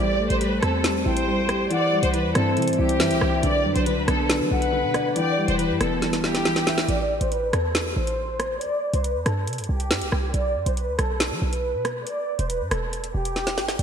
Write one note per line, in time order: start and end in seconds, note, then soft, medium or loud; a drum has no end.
0.00 0.29 A1 loud
0.00 0.40 G3 medium
0.00 1.69 A3 medium
0.00 1.69 G4 medium
0.00 1.69 C5 medium
0.00 0.28 D5 medium
0.19 1.27 A3 medium
0.30 0.61 A1 loud
0.30 0.40 C5 medium
0.30 closed hi-hat medium
0.41 0.83 G3 medium
0.41 0.61 B4 medium
0.41 closed hi-hat medium
0.62 1.04 E2 loud
0.62 1.70 C4 medium
0.62 0.83 A4 medium
0.62 cross-stick loud
0.62 closed hi-hat medium
0.84 1.26 G3 medium
0.84 snare loud
0.84 closed hi-hat medium
1.06 1.68 A1 loud
1.06 1.70 E4 medium
1.06 1.67 C5 medium
1.06 1.67 G5 medium
1.17 closed hi-hat medium
1.27 1.71 G3 medium
1.49 1.71 G4 medium
1.49 cross-stick medium
1.49 closed hi-hat medium
1.70 2.12 E3 medium
1.70 3.42 G3 medium
1.70 3.42 E4 medium
1.70 3.42 C5 medium
1.70 2.01 D5 loud
1.70 2.11 F#5 loud
1.70 closed hi-hat medium
1.92 3.00 G3 medium
2.03 2.26 C2 loud
2.03 2.13 C5 medium
2.03 closed hi-hat medium
2.14 2.56 E3 medium
2.14 2.34 B4 medium
2.14 closed hi-hat medium
2.25 2.35 E2 loud
2.35 2.58 G2 loud
2.35 3.43 C4 loud
2.35 2.55 A4 medium
2.35 cross-stick loud
2.35 closed hi-hat medium
2.57 2.69 C3 loud
2.57 2.99 E3 medium
2.57 closed hi-hat medium
2.62 closed hi-hat medium
2.68 2.78 G2 loud
2.68 closed hi-hat medium
2.73 closed hi-hat medium
2.79 3.02 C2 loud
2.79 3.43 E4 medium
2.79 3.39 G4 medium
2.89 closed hi-hat medium
3.00 3.12 G2 loud
3.00 3.43 E3 medium
3.00 3.21 E5 medium
3.00 snare loud
3.00 closed hi-hat medium
3.11 3.21 C2 loud
3.11 closed hi-hat medium
3.21 3.42 C2 loud
3.21 3.43 E5 medium
3.21 3.42 G5 medium
3.21 cross-stick medium
3.43 3.66 B1 loud
3.43 3.85 D3 medium
3.43 5.14 F#3 medium
3.43 5.14 D4 medium
3.43 6.85 B4 medium
3.43 3.74 D5 loud
3.43 closed hi-hat medium
3.65 3.75 F#2 loud
3.65 4.73 F#3 medium
3.75 3.99 B1 loud
3.75 3.86 C5 medium
3.75 closed hi-hat medium
3.86 4.28 D3 medium
3.86 4.06 B4 medium
3.86 closed hi-hat medium
3.97 4.07 D2 loud
4.08 4.42 B1 loud
4.08 5.16 B3 loud
4.08 4.28 A4 medium
4.08 cross-stick loud
4.08 closed hi-hat medium
4.30 4.71 D3 medium
4.30 snare loud
4.30 closed hi-hat medium
4.40 4.51 F#3 loud
4.51 4.85 B1 loud
4.51 5.16 D4 medium
4.51 5.12 B4 medium
4.51 5.12 F#5 medium
4.62 closed hi-hat medium
4.73 5.16 D3 medium
4.84 5.14 B2 loud
4.94 5.16 D5 medium
4.94 cross-stick medium
4.94 closed hi-hat medium
5.16 5.57 E3 medium
5.16 6.87 G3 medium
5.16 6.87 E4 medium
5.16 5.46 D5 loud
5.16 5.56 G5 loud
5.16 closed hi-hat medium
5.38 6.45 G3 medium
5.48 5.71 E1 loud
5.48 5.58 C5 medium
5.48 closed hi-hat medium
5.59 6.01 E3 medium
5.59 5.79 B4 medium
5.59 closed hi-hat medium
5.70 5.80 G2 loud
5.81 6.85 E1 loud
5.81 6.88 B3 loud
5.81 6.01 A4 medium
5.81 cross-stick loud
5.81 closed hi-hat medium
6.02 6.44 E3 medium
6.02 snare medium
6.02 closed hi-hat medium
6.13 snare medium
6.13 closed hi-hat medium
6.24 6.89 E4 medium
6.24 6.85 G4 medium
6.24 snare medium
6.35 snare medium
6.35 closed hi-hat medium
6.45 6.88 E3 medium
6.45 snare medium
6.45 closed hi-hat soft
6.56 snare medium
6.56 closed hi-hat medium
6.67 6.89 E5 medium
6.67 snare loud
6.67 open hi-hat soft
6.78 snare loud
6.88 7.20 A1 loud
6.88 7.19 D5 medium
6.88 closed hi-hat medium
7.21 7.52 A1 loud
7.21 7.31 C5 medium
7.21 closed hi-hat medium
7.32 7.52 B4 medium
7.32 closed hi-hat medium
7.53 7.95 E2 loud
7.53 7.74 A4 medium
7.53 cross-stick loud
7.53 closed hi-hat medium
7.75 snare loud
7.75 closed hi-hat medium
7.96 8.59 A1 loud
7.96 8.57 C5 medium
8.07 closed hi-hat medium
8.40 cross-stick medium
8.40 closed hi-hat medium
8.61 8.92 D5 loud
8.61 closed hi-hat medium
8.93 9.17 C2 loud
8.93 9.04 C5 medium
8.93 closed hi-hat medium
9.04 9.24 B4 medium
9.04 closed hi-hat medium
9.15 9.25 E2 loud
9.26 9.49 G2 loud
9.26 9.46 A4 medium
9.26 cross-stick medium
9.26 closed hi-hat medium
9.47 9.60 C3 loud
9.47 closed hi-hat medium
9.53 closed hi-hat medium
9.58 9.69 G2 loud
9.58 closed hi-hat medium
9.64 closed hi-hat medium
9.69 9.92 C2 loud
9.69 10.30 G4 medium
9.80 closed hi-hat medium
9.91 10.03 G2 loud
9.91 snare loud
9.91 closed hi-hat medium
10.02 10.12 C2 loud
10.02 closed hi-hat medium
10.12 10.33 C2 loud
10.12 cross-stick medium
10.34 10.57 B1 loud
10.34 10.64 D5 loud
10.34 closed hi-hat medium
10.55 10.66 F#2 loud
10.66 10.89 B1 loud
10.66 10.76 C5 medium
10.66 closed hi-hat medium
10.77 10.97 B4 medium
10.77 closed hi-hat medium
10.88 10.98 D2 loud
10.99 11.33 B1 loud
10.99 11.19 A4 medium
10.99 cross-stick medium
10.99 closed hi-hat medium
11.20 snare loud
11.20 closed hi-hat medium
11.31 11.41 F#3 loud
11.42 11.76 B1 loud
11.42 12.03 B4 medium
11.53 closed hi-hat medium
11.74 12.05 B2 loud
11.85 cross-stick medium
11.85 closed hi-hat medium
12.07 12.37 D5 loud
12.07 closed hi-hat medium
12.39 12.62 E1 loud
12.39 12.49 C5 medium
12.39 closed hi-hat medium
12.50 12.70 B4 medium
12.50 closed hi-hat medium
12.61 12.71 G2 loud
12.71 13.13 E1 loud
12.71 12.91 A4 medium
12.71 cross-stick loud
12.71 closed hi-hat medium
12.93 closed hi-hat medium
13.04 closed hi-hat medium
13.15 13.59 E1 loud
13.15 13.75 G4 medium
13.25 closed hi-hat medium
13.36 snare medium
13.36 closed hi-hat soft
13.47 snare medium
13.47 closed hi-hat medium
13.58 13.78 G1 loud
13.58 snare medium
13.58 open hi-hat soft
13.68 snare medium
13.79 13.83 A1 loud
13.79 13.83 D5 medium
13.79 closed hi-hat medium